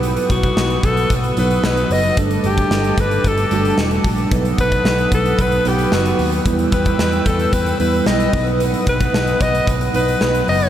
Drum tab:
HH |xxxx-xxxxxxx-xox|xxxx-xxxxxxx-xox|xxxx-xxxxxxx-xox|xxxx-xxxxxxx-xox|
SD |----o-------o---|----o-------o---|----o-------o---|----o-------o---|
BD |--oo--o-o-------|o--o--o-o-----o-|o-oo--o-o-------|o-oo--o-o-----o-|

HH |xxxx-xxxxxxx-xox|
SD |----o-------o---|
BD |--oo--o-o-------|